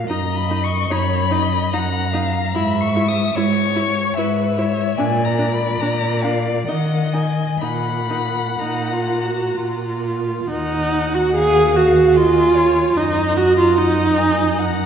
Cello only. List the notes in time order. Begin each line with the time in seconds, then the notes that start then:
0.09 F#2
0.90 F#2
1.73 F#2
2.54 G#2
3.35 G#2
4.17 G#2
4.99 A#2
5.81 A#2
6.68 D#3
7.62 A#2
8.60 A#2
9.56 A#2
10.49 D#2
12.97 F#2